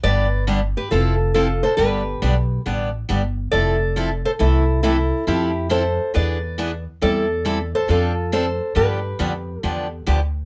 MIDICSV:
0, 0, Header, 1, 4, 480
1, 0, Start_track
1, 0, Tempo, 436364
1, 33, Time_signature, 4, 2, 24, 8
1, 11496, End_track
2, 0, Start_track
2, 0, Title_t, "Nylon-string guitar"
2, 0, Program_c, 0, 24
2, 39, Note_on_c, 0, 74, 106
2, 45, Note_on_c, 0, 71, 86
2, 483, Note_off_c, 0, 74, 0
2, 487, Note_off_c, 0, 71, 0
2, 847, Note_on_c, 0, 67, 64
2, 852, Note_on_c, 0, 71, 80
2, 989, Note_off_c, 0, 67, 0
2, 997, Note_on_c, 0, 65, 67
2, 1003, Note_on_c, 0, 69, 88
2, 1007, Note_off_c, 0, 71, 0
2, 1443, Note_off_c, 0, 65, 0
2, 1464, Note_off_c, 0, 69, 0
2, 1478, Note_on_c, 0, 69, 92
2, 1480, Note_on_c, 0, 65, 69
2, 1778, Note_off_c, 0, 65, 0
2, 1790, Note_off_c, 0, 69, 0
2, 1793, Note_on_c, 0, 72, 94
2, 1804, Note_on_c, 0, 69, 74
2, 1941, Note_off_c, 0, 72, 0
2, 1946, Note_on_c, 0, 71, 91
2, 1948, Note_off_c, 0, 69, 0
2, 1953, Note_on_c, 0, 67, 74
2, 2868, Note_off_c, 0, 71, 0
2, 2872, Note_off_c, 0, 67, 0
2, 3867, Note_on_c, 0, 74, 96
2, 3869, Note_on_c, 0, 69, 86
2, 4631, Note_off_c, 0, 74, 0
2, 4633, Note_off_c, 0, 69, 0
2, 4679, Note_on_c, 0, 69, 66
2, 4680, Note_on_c, 0, 72, 89
2, 4734, Note_off_c, 0, 69, 0
2, 4734, Note_off_c, 0, 72, 0
2, 4839, Note_on_c, 0, 69, 87
2, 4845, Note_on_c, 0, 64, 71
2, 5287, Note_off_c, 0, 64, 0
2, 5299, Note_off_c, 0, 69, 0
2, 5311, Note_on_c, 0, 69, 85
2, 5315, Note_on_c, 0, 64, 69
2, 5763, Note_off_c, 0, 64, 0
2, 5806, Note_off_c, 0, 69, 0
2, 5810, Note_on_c, 0, 64, 67
2, 5810, Note_on_c, 0, 67, 89
2, 6250, Note_off_c, 0, 64, 0
2, 6276, Note_off_c, 0, 67, 0
2, 6280, Note_on_c, 0, 69, 71
2, 6280, Note_on_c, 0, 72, 91
2, 6726, Note_off_c, 0, 69, 0
2, 6759, Note_on_c, 0, 71, 64
2, 6766, Note_off_c, 0, 72, 0
2, 6771, Note_on_c, 0, 74, 83
2, 7517, Note_off_c, 0, 71, 0
2, 7523, Note_off_c, 0, 74, 0
2, 7724, Note_on_c, 0, 69, 84
2, 7728, Note_on_c, 0, 74, 103
2, 8479, Note_off_c, 0, 69, 0
2, 8520, Note_off_c, 0, 74, 0
2, 8525, Note_on_c, 0, 72, 85
2, 8526, Note_on_c, 0, 69, 69
2, 8669, Note_off_c, 0, 72, 0
2, 8670, Note_off_c, 0, 69, 0
2, 8694, Note_on_c, 0, 65, 68
2, 8695, Note_on_c, 0, 69, 85
2, 9133, Note_off_c, 0, 65, 0
2, 9156, Note_off_c, 0, 69, 0
2, 9164, Note_on_c, 0, 72, 91
2, 9169, Note_on_c, 0, 69, 74
2, 9610, Note_off_c, 0, 69, 0
2, 9636, Note_off_c, 0, 72, 0
2, 9640, Note_on_c, 0, 71, 84
2, 9650, Note_on_c, 0, 67, 67
2, 10586, Note_off_c, 0, 71, 0
2, 10586, Note_on_c, 0, 69, 84
2, 11035, Note_off_c, 0, 69, 0
2, 11040, Note_off_c, 0, 67, 0
2, 11496, End_track
3, 0, Start_track
3, 0, Title_t, "Steel-string acoustic guitar"
3, 0, Program_c, 1, 25
3, 37, Note_on_c, 1, 50, 60
3, 38, Note_on_c, 1, 55, 55
3, 41, Note_on_c, 1, 59, 60
3, 44, Note_on_c, 1, 62, 62
3, 48, Note_on_c, 1, 67, 66
3, 286, Note_off_c, 1, 50, 0
3, 286, Note_off_c, 1, 55, 0
3, 288, Note_off_c, 1, 59, 0
3, 289, Note_off_c, 1, 62, 0
3, 291, Note_off_c, 1, 67, 0
3, 519, Note_on_c, 1, 50, 77
3, 521, Note_on_c, 1, 59, 82
3, 522, Note_on_c, 1, 55, 75
3, 522, Note_on_c, 1, 62, 79
3, 529, Note_on_c, 1, 67, 83
3, 649, Note_off_c, 1, 50, 0
3, 650, Note_off_c, 1, 59, 0
3, 651, Note_off_c, 1, 55, 0
3, 651, Note_off_c, 1, 62, 0
3, 654, Note_off_c, 1, 67, 0
3, 1010, Note_on_c, 1, 53, 58
3, 1011, Note_on_c, 1, 60, 63
3, 1013, Note_on_c, 1, 64, 58
3, 1017, Note_on_c, 1, 69, 69
3, 1253, Note_off_c, 1, 53, 0
3, 1253, Note_off_c, 1, 60, 0
3, 1255, Note_off_c, 1, 64, 0
3, 1256, Note_off_c, 1, 69, 0
3, 1481, Note_on_c, 1, 53, 65
3, 1488, Note_on_c, 1, 60, 76
3, 1492, Note_on_c, 1, 64, 76
3, 1493, Note_on_c, 1, 69, 83
3, 1611, Note_off_c, 1, 53, 0
3, 1614, Note_off_c, 1, 60, 0
3, 1616, Note_off_c, 1, 64, 0
3, 1617, Note_off_c, 1, 69, 0
3, 1958, Note_on_c, 1, 50, 54
3, 1963, Note_on_c, 1, 55, 55
3, 1963, Note_on_c, 1, 59, 58
3, 1968, Note_on_c, 1, 62, 62
3, 1968, Note_on_c, 1, 67, 59
3, 2208, Note_off_c, 1, 50, 0
3, 2210, Note_off_c, 1, 55, 0
3, 2210, Note_off_c, 1, 59, 0
3, 2212, Note_off_c, 1, 62, 0
3, 2212, Note_off_c, 1, 67, 0
3, 2441, Note_on_c, 1, 50, 67
3, 2441, Note_on_c, 1, 55, 67
3, 2441, Note_on_c, 1, 59, 80
3, 2446, Note_on_c, 1, 62, 77
3, 2448, Note_on_c, 1, 67, 74
3, 2571, Note_off_c, 1, 50, 0
3, 2572, Note_off_c, 1, 55, 0
3, 2572, Note_off_c, 1, 59, 0
3, 2574, Note_off_c, 1, 62, 0
3, 2575, Note_off_c, 1, 67, 0
3, 2922, Note_on_c, 1, 55, 53
3, 2925, Note_on_c, 1, 50, 57
3, 2927, Note_on_c, 1, 59, 62
3, 2929, Note_on_c, 1, 67, 54
3, 2930, Note_on_c, 1, 62, 62
3, 3170, Note_off_c, 1, 55, 0
3, 3172, Note_off_c, 1, 50, 0
3, 3173, Note_off_c, 1, 59, 0
3, 3174, Note_off_c, 1, 62, 0
3, 3174, Note_off_c, 1, 67, 0
3, 3396, Note_on_c, 1, 50, 68
3, 3396, Note_on_c, 1, 59, 73
3, 3397, Note_on_c, 1, 55, 75
3, 3403, Note_on_c, 1, 67, 77
3, 3404, Note_on_c, 1, 62, 70
3, 3529, Note_off_c, 1, 59, 0
3, 3530, Note_off_c, 1, 50, 0
3, 3530, Note_off_c, 1, 55, 0
3, 3533, Note_off_c, 1, 62, 0
3, 3533, Note_off_c, 1, 67, 0
3, 3874, Note_on_c, 1, 53, 56
3, 3883, Note_on_c, 1, 60, 56
3, 3884, Note_on_c, 1, 64, 55
3, 3889, Note_on_c, 1, 69, 67
3, 4127, Note_off_c, 1, 53, 0
3, 4131, Note_off_c, 1, 60, 0
3, 4132, Note_off_c, 1, 64, 0
3, 4134, Note_off_c, 1, 69, 0
3, 4357, Note_on_c, 1, 53, 69
3, 4361, Note_on_c, 1, 60, 67
3, 4368, Note_on_c, 1, 64, 78
3, 4370, Note_on_c, 1, 69, 73
3, 4490, Note_off_c, 1, 53, 0
3, 4492, Note_off_c, 1, 60, 0
3, 4496, Note_off_c, 1, 64, 0
3, 4497, Note_off_c, 1, 69, 0
3, 4831, Note_on_c, 1, 48, 55
3, 4831, Note_on_c, 1, 52, 60
3, 4832, Note_on_c, 1, 57, 59
3, 4841, Note_on_c, 1, 64, 57
3, 4845, Note_on_c, 1, 69, 58
3, 5085, Note_off_c, 1, 48, 0
3, 5085, Note_off_c, 1, 52, 0
3, 5086, Note_off_c, 1, 57, 0
3, 5090, Note_off_c, 1, 64, 0
3, 5092, Note_off_c, 1, 69, 0
3, 5316, Note_on_c, 1, 48, 70
3, 5319, Note_on_c, 1, 52, 76
3, 5323, Note_on_c, 1, 57, 66
3, 5324, Note_on_c, 1, 69, 81
3, 5325, Note_on_c, 1, 64, 82
3, 5450, Note_off_c, 1, 48, 0
3, 5451, Note_off_c, 1, 52, 0
3, 5453, Note_off_c, 1, 57, 0
3, 5454, Note_off_c, 1, 69, 0
3, 5455, Note_off_c, 1, 64, 0
3, 5796, Note_on_c, 1, 53, 60
3, 5799, Note_on_c, 1, 60, 56
3, 5803, Note_on_c, 1, 64, 63
3, 5805, Note_on_c, 1, 69, 60
3, 6048, Note_off_c, 1, 53, 0
3, 6050, Note_off_c, 1, 60, 0
3, 6051, Note_off_c, 1, 64, 0
3, 6053, Note_off_c, 1, 69, 0
3, 6264, Note_on_c, 1, 53, 66
3, 6269, Note_on_c, 1, 60, 76
3, 6270, Note_on_c, 1, 64, 78
3, 6273, Note_on_c, 1, 69, 76
3, 6404, Note_off_c, 1, 53, 0
3, 6407, Note_off_c, 1, 60, 0
3, 6407, Note_off_c, 1, 64, 0
3, 6408, Note_off_c, 1, 69, 0
3, 6752, Note_on_c, 1, 52, 52
3, 6756, Note_on_c, 1, 59, 58
3, 6762, Note_on_c, 1, 68, 62
3, 6764, Note_on_c, 1, 62, 60
3, 7006, Note_off_c, 1, 52, 0
3, 7008, Note_off_c, 1, 59, 0
3, 7011, Note_off_c, 1, 68, 0
3, 7012, Note_off_c, 1, 62, 0
3, 7238, Note_on_c, 1, 52, 68
3, 7243, Note_on_c, 1, 59, 74
3, 7247, Note_on_c, 1, 62, 85
3, 7250, Note_on_c, 1, 68, 81
3, 7371, Note_off_c, 1, 52, 0
3, 7374, Note_off_c, 1, 59, 0
3, 7376, Note_off_c, 1, 62, 0
3, 7377, Note_off_c, 1, 68, 0
3, 7717, Note_on_c, 1, 52, 53
3, 7722, Note_on_c, 1, 55, 59
3, 7724, Note_on_c, 1, 64, 59
3, 7725, Note_on_c, 1, 60, 63
3, 7727, Note_on_c, 1, 69, 62
3, 7968, Note_off_c, 1, 52, 0
3, 7970, Note_off_c, 1, 55, 0
3, 7971, Note_off_c, 1, 64, 0
3, 7972, Note_off_c, 1, 60, 0
3, 7973, Note_off_c, 1, 69, 0
3, 8192, Note_on_c, 1, 52, 66
3, 8199, Note_on_c, 1, 55, 74
3, 8200, Note_on_c, 1, 64, 77
3, 8200, Note_on_c, 1, 69, 86
3, 8201, Note_on_c, 1, 60, 76
3, 8328, Note_off_c, 1, 52, 0
3, 8331, Note_off_c, 1, 55, 0
3, 8332, Note_off_c, 1, 60, 0
3, 8332, Note_off_c, 1, 64, 0
3, 8332, Note_off_c, 1, 69, 0
3, 8670, Note_on_c, 1, 53, 58
3, 8675, Note_on_c, 1, 60, 58
3, 8679, Note_on_c, 1, 62, 64
3, 8679, Note_on_c, 1, 69, 63
3, 8924, Note_off_c, 1, 53, 0
3, 8927, Note_off_c, 1, 60, 0
3, 8929, Note_off_c, 1, 62, 0
3, 8929, Note_off_c, 1, 69, 0
3, 9154, Note_on_c, 1, 53, 68
3, 9159, Note_on_c, 1, 60, 76
3, 9163, Note_on_c, 1, 62, 81
3, 9163, Note_on_c, 1, 69, 77
3, 9289, Note_off_c, 1, 53, 0
3, 9291, Note_off_c, 1, 60, 0
3, 9293, Note_off_c, 1, 62, 0
3, 9293, Note_off_c, 1, 69, 0
3, 9623, Note_on_c, 1, 50, 54
3, 9625, Note_on_c, 1, 53, 58
3, 9628, Note_on_c, 1, 59, 58
3, 9633, Note_on_c, 1, 62, 62
3, 9635, Note_on_c, 1, 67, 67
3, 9881, Note_off_c, 1, 50, 0
3, 9882, Note_off_c, 1, 53, 0
3, 9883, Note_off_c, 1, 59, 0
3, 9885, Note_off_c, 1, 62, 0
3, 9887, Note_off_c, 1, 67, 0
3, 10109, Note_on_c, 1, 50, 76
3, 10111, Note_on_c, 1, 53, 69
3, 10117, Note_on_c, 1, 59, 73
3, 10118, Note_on_c, 1, 62, 71
3, 10123, Note_on_c, 1, 67, 74
3, 10246, Note_off_c, 1, 50, 0
3, 10246, Note_off_c, 1, 53, 0
3, 10250, Note_off_c, 1, 59, 0
3, 10250, Note_off_c, 1, 62, 0
3, 10253, Note_off_c, 1, 67, 0
3, 10595, Note_on_c, 1, 50, 56
3, 10595, Note_on_c, 1, 53, 59
3, 10598, Note_on_c, 1, 59, 60
3, 10599, Note_on_c, 1, 62, 60
3, 10603, Note_on_c, 1, 67, 62
3, 10847, Note_off_c, 1, 50, 0
3, 10847, Note_off_c, 1, 53, 0
3, 10848, Note_off_c, 1, 59, 0
3, 10848, Note_off_c, 1, 62, 0
3, 10851, Note_off_c, 1, 67, 0
3, 11071, Note_on_c, 1, 50, 73
3, 11072, Note_on_c, 1, 53, 75
3, 11077, Note_on_c, 1, 59, 77
3, 11077, Note_on_c, 1, 62, 68
3, 11078, Note_on_c, 1, 67, 81
3, 11207, Note_off_c, 1, 50, 0
3, 11208, Note_off_c, 1, 53, 0
3, 11210, Note_off_c, 1, 59, 0
3, 11210, Note_off_c, 1, 62, 0
3, 11210, Note_off_c, 1, 67, 0
3, 11496, End_track
4, 0, Start_track
4, 0, Title_t, "Upright bass"
4, 0, Program_c, 2, 32
4, 42, Note_on_c, 2, 31, 95
4, 807, Note_off_c, 2, 31, 0
4, 1010, Note_on_c, 2, 29, 91
4, 1773, Note_off_c, 2, 29, 0
4, 1958, Note_on_c, 2, 31, 90
4, 2341, Note_off_c, 2, 31, 0
4, 2448, Note_on_c, 2, 35, 79
4, 2852, Note_off_c, 2, 35, 0
4, 2926, Note_on_c, 2, 33, 78
4, 3331, Note_off_c, 2, 33, 0
4, 3410, Note_on_c, 2, 31, 83
4, 3813, Note_off_c, 2, 31, 0
4, 3889, Note_on_c, 2, 29, 85
4, 4654, Note_off_c, 2, 29, 0
4, 4844, Note_on_c, 2, 36, 83
4, 5610, Note_off_c, 2, 36, 0
4, 5802, Note_on_c, 2, 41, 93
4, 6569, Note_off_c, 2, 41, 0
4, 6775, Note_on_c, 2, 40, 84
4, 7536, Note_off_c, 2, 40, 0
4, 7732, Note_on_c, 2, 40, 92
4, 8494, Note_off_c, 2, 40, 0
4, 8681, Note_on_c, 2, 41, 84
4, 9447, Note_off_c, 2, 41, 0
4, 9640, Note_on_c, 2, 43, 92
4, 10023, Note_off_c, 2, 43, 0
4, 10121, Note_on_c, 2, 41, 83
4, 10527, Note_off_c, 2, 41, 0
4, 10603, Note_on_c, 2, 40, 76
4, 11009, Note_off_c, 2, 40, 0
4, 11086, Note_on_c, 2, 38, 83
4, 11491, Note_off_c, 2, 38, 0
4, 11496, End_track
0, 0, End_of_file